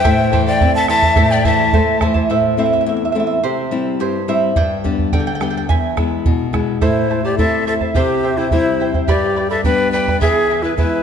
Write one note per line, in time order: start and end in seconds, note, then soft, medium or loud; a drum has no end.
0.00 0.31 A4 medium
0.00 0.43 C5 medium
0.00 0.43 G5 medium
0.04 1.14 A2 medium
0.04 0.31 E4 medium
0.04 0.32 C5 medium
0.04 0.30 E5 medium
0.04 0.32 A5 medium
0.04 bombo low medium
0.32 0.60 E3 medium
0.32 0.46 E4 medium
0.32 0.46 C5 medium
0.32 0.46 E5 medium
0.32 0.45 A5 medium
0.32 bombo low medium
0.46 0.60 E4 soft
0.46 0.60 C5 medium
0.46 0.73 D5 medium
0.46 0.73 G5 loud
0.46 0.60 A5 medium
0.60 0.89 C4 medium
0.60 0.87 E4 medium
0.60 0.88 C5 medium
0.60 0.87 E5 soft
0.60 0.88 A5 medium
0.60 bombo low medium
0.75 0.89 E5 medium
0.75 0.88 A5 loud
0.88 1.16 E3 soft
0.88 1.02 E4 medium
0.88 1.02 C5 medium
0.88 1.02 E5 medium
0.88 1.33 E5 medium
0.88 1.33 A5 loud
0.88 1.01 A5 medium
0.88 bombo rim soft
1.02 1.15 E4 soft
1.02 1.15 C5 soft
1.02 1.15 A5 soft
1.02 bombo low medium
1.16 2.26 A2 medium
1.16 1.43 E4 medium
1.16 1.44 A4 medium
1.16 1.44 C5 medium
1.16 1.43 E5 medium
1.16 1.44 A5 medium
1.16 bombo low medium
1.31 1.47 D5 medium
1.31 1.47 G5 medium
1.44 1.72 E3 medium
1.44 1.59 E4 medium
1.44 1.58 C5 medium
1.44 1.59 E5 medium
1.44 2.02 E5 medium
1.44 2.02 A5 medium
1.44 1.57 A5 medium
1.44 bombo low medium
1.58 1.72 E4 soft
1.58 1.73 C5 soft
1.58 1.73 A5 medium
1.73 2.01 A3 medium
1.73 2.00 E4 medium
1.73 2.00 A4 medium
1.73 2.00 C5 medium
1.73 1.99 E5 medium
1.73 2.01 A5 medium
1.73 bombo low medium
2.00 2.29 E3 soft
2.00 2.14 E4 medium
2.00 2.14 C5 medium
2.00 2.02 E5 medium
2.00 2.29 E5 medium
2.00 2.13 A5 medium
2.00 bombo rim medium
2.00 bombo low medium
2.14 2.30 E4 soft
2.14 2.29 C5 soft
2.14 2.29 A5 medium
2.14 bombo low medium
2.30 2.84 A2 medium
2.30 2.56 C5 medium
2.30 2.58 E5 medium
2.57 3.03 A3 soft
2.57 3.03 C4 soft
2.57 3.03 E4 soft
2.57 2.65 C5 medium
2.57 2.65 E5 medium
2.66 2.72 E5 soft
2.73 2.80 E5 medium
2.81 2.88 E5 soft
2.86 3.41 E2 medium
2.86 2.95 E5 soft
2.97 3.04 E5 soft
3.05 3.11 E5 medium
3.12 3.37 A3 soft
3.12 3.38 C4 soft
3.12 3.38 E4 soft
3.12 3.19 E5 soft
3.20 3.26 E5 medium
3.27 3.34 E5 soft
3.43 3.98 C3 medium
3.43 3.96 G4 medium
3.43 4.00 C5 medium
3.71 4.16 G3 soft
3.71 4.17 C4 soft
3.71 4.17 E4 soft
4.00 4.54 G2 medium
4.00 4.27 G4 medium
4.00 4.28 C5 medium
4.28 4.50 G3 soft
4.28 4.51 C4 soft
4.28 4.51 E4 soft
4.28 4.55 C5 medium
4.28 4.57 E5 medium
4.56 5.11 G2 medium
4.56 5.09 D5 medium
4.56 5.09 G5 medium
4.56 bombo low medium
4.84 5.29 G3 soft
4.84 5.30 B3 soft
4.84 5.30 D4 soft
4.84 bombo low soft
4.99 bombo low soft
5.12 5.68 D3 medium
5.12 5.20 D5 medium
5.12 5.19 G5 medium
5.12 bombo low medium
5.20 5.26 G5 medium
5.27 5.34 G5 medium
5.35 5.41 G5 medium
5.41 5.63 G3 soft
5.41 5.64 B3 soft
5.41 5.64 D4 soft
5.41 5.49 G5 medium
5.41 bombo rim soft
5.50 5.56 G5 medium
5.57 5.65 G5 medium
5.69 6.25 E2 medium
5.69 6.50 E5 medium
5.69 6.50 G#5 medium
5.69 bombo low medium
5.97 6.42 G#3 soft
5.97 6.43 B3 soft
5.97 6.43 E4 soft
5.97 bombo rim soft
5.97 bombo low soft
6.26 6.81 B2 medium
6.26 bombo low medium
6.53 6.76 G#3 soft
6.53 6.76 B3 soft
6.53 6.77 E4 soft
6.53 bombo rim soft
6.53 bombo low soft
6.81 7.92 A2 medium
6.81 7.21 E4 medium
6.81 7.09 E4 medium
6.81 7.09 A4 medium
6.81 7.10 C5 medium
6.81 7.22 C5 medium
6.81 7.08 E5 medium
6.81 7.10 A5 medium
6.81 bombo low medium
7.10 7.25 E4 soft
7.10 7.24 C5 soft
7.10 7.24 E5 soft
7.10 7.23 A5 soft
7.24 7.39 E4 soft
7.24 7.38 G4 medium
7.24 7.39 C5 soft
7.24 7.38 D5 medium
7.24 7.39 A5 soft
7.38 7.94 A3 soft
7.38 7.94 C4 soft
7.38 7.94 E4 soft
7.38 7.66 E4 soft
7.38 7.65 A4 medium
7.38 7.66 C5 soft
7.38 7.65 E5 medium
7.38 7.65 E5 soft
7.38 7.66 A5 soft
7.38 bombo low medium
7.67 7.81 E4 medium
7.67 7.74 A4 medium
7.67 7.80 C5 medium
7.67 7.81 E5 soft
7.67 7.73 E5 medium
7.67 7.80 A5 medium
7.80 7.95 E4 soft
7.80 7.95 C5 soft
7.80 7.95 A5 soft
7.80 bombo low soft
7.95 9.05 C3 medium
7.95 8.23 E4 medium
7.95 8.24 G4 medium
7.95 8.39 G4 medium
7.95 8.38 C5 medium
7.95 8.23 C5 medium
7.95 8.22 E5 medium
7.95 8.23 G5 medium
7.95 bombo low medium
8.23 8.38 E4 medium
8.23 8.38 C5 medium
8.23 8.38 E5 medium
8.23 8.37 G5 medium
8.37 8.51 E4 medium
8.37 8.52 E4 soft
8.37 8.51 C5 medium
8.37 8.52 C5 soft
8.37 8.52 G5 soft
8.51 9.07 G3 soft
8.51 9.07 C4 soft
8.51 8.91 E4 medium
8.51 9.07 E4 soft
8.51 8.80 E4 soft
8.51 8.92 C5 medium
8.51 8.80 C5 medium
8.51 8.79 E5 soft
8.51 8.80 G5 medium
8.51 bombo low medium
8.80 8.95 E4 medium
8.80 8.94 C5 medium
8.80 8.94 E5 medium
8.80 8.93 G5 medium
8.94 9.08 E4 soft
8.94 9.08 C5 soft
8.94 9.07 G5 soft
8.94 bombo low soft
9.08 10.19 G2 medium
9.08 9.37 G4 medium
9.08 9.48 G4 medium
9.08 9.35 B4 medium
9.08 9.48 D5 medium
9.08 9.36 D5 medium
9.08 9.35 G5 medium
9.08 9.36 B5 medium
9.08 bombo low medium
9.36 9.51 B4 medium
9.36 9.50 D5 medium
9.36 9.51 G5 medium
9.36 9.49 B5 medium
9.50 9.64 A4 medium
9.50 9.64 B4 soft
9.50 9.65 D5 soft
9.50 9.64 E5 medium
9.50 9.65 B5 soft
9.64 10.20 G3 soft
9.64 10.20 B3 soft
9.64 10.20 D4 soft
9.64 9.91 B4 medium
9.64 9.93 B4 soft
9.64 9.93 D5 soft
9.64 9.91 G5 medium
9.64 9.92 G5 soft
9.64 9.94 B5 medium
9.64 bombo low medium
9.92 10.19 B4 medium
9.92 10.08 B4 medium
9.92 10.08 D5 medium
9.92 10.19 G5 medium
9.92 10.08 G5 soft
9.92 10.07 B5 medium
10.08 10.22 B4 soft
10.08 10.22 D5 soft
10.08 10.22 B5 soft
10.08 bombo low soft
10.21 11.03 E2 medium
10.21 10.49 E4 medium
10.21 10.64 G#4 medium
10.21 10.50 G#4 medium
10.21 10.50 B4 medium
10.21 10.65 E5 medium
10.21 10.49 E5 medium
10.21 10.50 G#5 medium
10.21 bombo low medium
10.50 10.64 E4 medium
10.50 10.64 B4 medium
10.50 10.64 E5 soft
10.50 10.63 G#5 medium
10.62 10.76 E4 medium
10.62 10.78 E4 soft
10.62 10.77 B4 medium
10.62 10.78 B4 soft
10.62 10.78 G#5 soft
10.77 11.03 G#3 soft
10.77 11.03 B3 soft
10.77 11.03 E4 medium
10.77 11.03 E4 soft
10.77 11.03 E4 medium
10.77 11.03 B4 medium
10.77 11.03 E5 soft
10.77 11.03 G#5 soft
10.77 bombo low medium